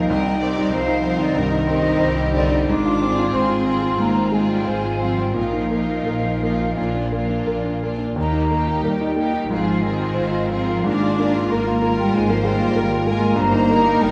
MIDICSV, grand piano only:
0, 0, Header, 1, 2, 480
1, 0, Start_track
1, 0, Tempo, 636267
1, 68, Time_signature, 4, 2, 24, 8
1, 1508, Tempo, 696864
1, 1988, Tempo, 657174
1, 3428, Tempo, 700935
1, 5828, Tempo, 662983
1, 7268, Tempo, 704225
1, 7748, Tempo, 657895
1, 8228, Tempo, 625000
1, 10218, End_track
2, 0, Start_track
2, 0, Title_t, "Grand piano"
2, 0, Program_c, 0, 0
2, 0, Control_c, 0, 64, 127
2, 0, Note_on_c, 0, 46, 42
2, 0, Note_on_c, 0, 58, 46
2, 0, Note_on_c, 0, 63, 42
2, 0, Note_on_c, 0, 70, 48
2, 74, Note_on_c, 0, 36, 59
2, 80, Control_c, 0, 64, 0
2, 82, Note_off_c, 0, 70, 0
2, 83, Note_off_c, 0, 46, 0
2, 85, Note_off_c, 0, 63, 0
2, 86, Note_off_c, 0, 58, 0
2, 200, Note_on_c, 0, 63, 46
2, 218, Control_c, 0, 64, 127
2, 322, Note_on_c, 0, 60, 47
2, 383, Note_off_c, 0, 63, 0
2, 440, Note_on_c, 0, 63, 47
2, 504, Note_off_c, 0, 60, 0
2, 556, Note_on_c, 0, 72, 54
2, 624, Note_off_c, 0, 63, 0
2, 664, Note_on_c, 0, 63, 52
2, 742, Note_off_c, 0, 72, 0
2, 781, Note_on_c, 0, 60, 44
2, 857, Note_off_c, 0, 63, 0
2, 901, Note_on_c, 0, 63, 50
2, 976, Note_off_c, 0, 60, 0
2, 1000, Note_off_c, 0, 36, 0
2, 1023, Note_on_c, 0, 43, 51
2, 1095, Note_off_c, 0, 63, 0
2, 1143, Note_on_c, 0, 63, 51
2, 1216, Note_off_c, 0, 43, 0
2, 1262, Note_on_c, 0, 60, 47
2, 1336, Note_off_c, 0, 63, 0
2, 1377, Note_on_c, 0, 63, 53
2, 1458, Note_off_c, 0, 60, 0
2, 1498, Note_on_c, 0, 72, 55
2, 1573, Note_off_c, 0, 63, 0
2, 1615, Note_on_c, 0, 63, 49
2, 1692, Note_off_c, 0, 72, 0
2, 1742, Note_on_c, 0, 60, 49
2, 1817, Note_off_c, 0, 63, 0
2, 1862, Note_on_c, 0, 63, 50
2, 1940, Note_off_c, 0, 60, 0
2, 1985, Note_off_c, 0, 63, 0
2, 1986, Note_on_c, 0, 44, 58
2, 2005, Control_c, 0, 64, 0
2, 2104, Note_on_c, 0, 65, 45
2, 2116, Control_c, 0, 64, 127
2, 2222, Note_on_c, 0, 60, 43
2, 2293, Note_off_c, 0, 65, 0
2, 2342, Note_on_c, 0, 65, 47
2, 2410, Note_off_c, 0, 60, 0
2, 2457, Note_on_c, 0, 72, 49
2, 2529, Note_off_c, 0, 65, 0
2, 2573, Note_on_c, 0, 65, 44
2, 2648, Note_off_c, 0, 72, 0
2, 2689, Note_on_c, 0, 60, 42
2, 2767, Note_off_c, 0, 65, 0
2, 2811, Note_on_c, 0, 65, 46
2, 2886, Note_off_c, 0, 60, 0
2, 2908, Note_off_c, 0, 44, 0
2, 2928, Note_on_c, 0, 44, 48
2, 3008, Note_off_c, 0, 65, 0
2, 3050, Note_on_c, 0, 60, 43
2, 3173, Note_on_c, 0, 56, 41
2, 3251, Note_off_c, 0, 60, 0
2, 3298, Note_on_c, 0, 65, 40
2, 3375, Note_off_c, 0, 56, 0
2, 3421, Note_on_c, 0, 72, 47
2, 3496, Note_off_c, 0, 65, 0
2, 3537, Note_on_c, 0, 65, 38
2, 3614, Note_off_c, 0, 72, 0
2, 3654, Note_on_c, 0, 60, 39
2, 3733, Note_off_c, 0, 65, 0
2, 3772, Note_on_c, 0, 65, 38
2, 3854, Note_off_c, 0, 60, 0
2, 3876, Note_off_c, 0, 44, 0
2, 3891, Note_on_c, 0, 46, 47
2, 3901, Note_off_c, 0, 65, 0
2, 3923, Control_c, 0, 64, 0
2, 4018, Note_on_c, 0, 63, 37
2, 4050, Control_c, 0, 64, 127
2, 4137, Note_on_c, 0, 58, 33
2, 4216, Note_off_c, 0, 63, 0
2, 4262, Note_on_c, 0, 63, 32
2, 4336, Note_off_c, 0, 58, 0
2, 4385, Note_on_c, 0, 70, 37
2, 4458, Note_off_c, 0, 63, 0
2, 4499, Note_on_c, 0, 63, 37
2, 4581, Note_off_c, 0, 70, 0
2, 4634, Note_on_c, 0, 58, 36
2, 4699, Note_off_c, 0, 63, 0
2, 4762, Note_on_c, 0, 63, 34
2, 4826, Note_off_c, 0, 58, 0
2, 4837, Note_off_c, 0, 46, 0
2, 4867, Note_on_c, 0, 46, 46
2, 4877, Note_off_c, 0, 63, 0
2, 4886, Control_c, 0, 64, 0
2, 4991, Note_on_c, 0, 62, 38
2, 5017, Control_c, 0, 64, 127
2, 5108, Note_on_c, 0, 58, 37
2, 5181, Note_off_c, 0, 62, 0
2, 5225, Note_on_c, 0, 62, 36
2, 5299, Note_off_c, 0, 58, 0
2, 5348, Note_on_c, 0, 70, 40
2, 5418, Note_off_c, 0, 62, 0
2, 5462, Note_on_c, 0, 62, 35
2, 5541, Note_off_c, 0, 70, 0
2, 5595, Note_on_c, 0, 58, 34
2, 5659, Note_off_c, 0, 62, 0
2, 5699, Note_on_c, 0, 62, 36
2, 5784, Note_off_c, 0, 58, 0
2, 5797, Note_off_c, 0, 46, 0
2, 5818, Note_on_c, 0, 39, 49
2, 5822, Note_off_c, 0, 62, 0
2, 5842, Control_c, 0, 64, 0
2, 5940, Note_on_c, 0, 63, 41
2, 5970, Control_c, 0, 64, 127
2, 6074, Note_on_c, 0, 58, 39
2, 6141, Note_off_c, 0, 63, 0
2, 6193, Note_on_c, 0, 63, 41
2, 6268, Note_off_c, 0, 58, 0
2, 6315, Note_on_c, 0, 70, 44
2, 6389, Note_off_c, 0, 63, 0
2, 6435, Note_on_c, 0, 63, 43
2, 6509, Note_off_c, 0, 70, 0
2, 6546, Note_on_c, 0, 58, 39
2, 6628, Note_off_c, 0, 63, 0
2, 6669, Note_on_c, 0, 63, 42
2, 6742, Note_off_c, 0, 58, 0
2, 6762, Note_off_c, 0, 39, 0
2, 6792, Note_off_c, 0, 63, 0
2, 6794, Note_on_c, 0, 44, 56
2, 6809, Control_c, 0, 64, 0
2, 6908, Note_on_c, 0, 65, 42
2, 6941, Control_c, 0, 64, 127
2, 7031, Note_on_c, 0, 60, 43
2, 7100, Note_off_c, 0, 65, 0
2, 7148, Note_on_c, 0, 65, 43
2, 7221, Note_off_c, 0, 60, 0
2, 7254, Note_on_c, 0, 72, 46
2, 7336, Note_off_c, 0, 65, 0
2, 7370, Note_on_c, 0, 65, 40
2, 7449, Note_off_c, 0, 72, 0
2, 7492, Note_on_c, 0, 60, 42
2, 7572, Note_off_c, 0, 65, 0
2, 7623, Note_on_c, 0, 65, 43
2, 7694, Note_off_c, 0, 60, 0
2, 7720, Note_off_c, 0, 44, 0
2, 7730, Note_on_c, 0, 44, 55
2, 7746, Note_off_c, 0, 65, 0
2, 7764, Control_c, 0, 64, 0
2, 7868, Note_on_c, 0, 65, 44
2, 7887, Control_c, 0, 64, 127
2, 7987, Note_on_c, 0, 58, 42
2, 8063, Note_off_c, 0, 65, 0
2, 8109, Note_on_c, 0, 65, 45
2, 8178, Note_off_c, 0, 58, 0
2, 8226, Note_on_c, 0, 70, 46
2, 8299, Note_off_c, 0, 65, 0
2, 8344, Note_on_c, 0, 65, 51
2, 8418, Note_off_c, 0, 70, 0
2, 8455, Note_on_c, 0, 58, 46
2, 8535, Note_off_c, 0, 65, 0
2, 8574, Note_on_c, 0, 65, 48
2, 8650, Note_off_c, 0, 58, 0
2, 8664, Note_off_c, 0, 44, 0
2, 8706, Note_on_c, 0, 44, 51
2, 8771, Note_off_c, 0, 65, 0
2, 8823, Note_on_c, 0, 58, 52
2, 8936, Note_on_c, 0, 56, 54
2, 9018, Note_off_c, 0, 58, 0
2, 9044, Note_on_c, 0, 65, 50
2, 9134, Note_off_c, 0, 56, 0
2, 9175, Note_on_c, 0, 70, 57
2, 9246, Note_off_c, 0, 65, 0
2, 9297, Note_on_c, 0, 65, 49
2, 9370, Note_off_c, 0, 70, 0
2, 9417, Note_on_c, 0, 58, 50
2, 9490, Note_off_c, 0, 65, 0
2, 9516, Note_on_c, 0, 65, 54
2, 9611, Note_off_c, 0, 58, 0
2, 9634, Note_off_c, 0, 44, 0
2, 9637, Note_on_c, 0, 43, 69
2, 9649, Note_off_c, 0, 65, 0
2, 9674, Control_c, 0, 64, 0
2, 9765, Note_on_c, 0, 63, 55
2, 9791, Control_c, 0, 64, 127
2, 9894, Note_on_c, 0, 58, 52
2, 9967, Note_off_c, 0, 63, 0
2, 10016, Note_on_c, 0, 63, 55
2, 10093, Note_off_c, 0, 58, 0
2, 10153, Note_on_c, 0, 70, 54
2, 10216, Note_off_c, 0, 63, 0
2, 10218, Note_off_c, 0, 43, 0
2, 10218, Note_off_c, 0, 70, 0
2, 10218, End_track
0, 0, End_of_file